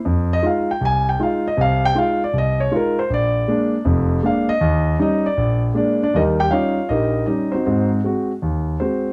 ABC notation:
X:1
M:4/4
L:1/8
Q:"Swing" 1/4=158
K:Fm
V:1 name="Grand piano"
z e f g a g f e | f g f =d e _d B c | =d4 z2 f e- | e2 e =d2 z d [=Dd] |
[EGBe] [Gg] [Fdf]2 [EGBe]2 e [CE_Gc]- | [CE_Gc] z4 z [CGc]2 |]
V:2 name="Grand piano" clef=bass
F,,2 [A,EF] z C,,2 [A,EF] z | [C,,C,]2 [A,EF] z C,,2 [A,EF] z | B,,,2 [A,B,=D] z [F,,,F,,]2 [A,B,D] z | E,,2 [G,DE] z B,,,2 [A,B,=D] z |
[E,,G,]2 [G,DE] z B,,,2 [G,DE] z | [A,,C]2 [A,C_G] z E,,2 A, z |]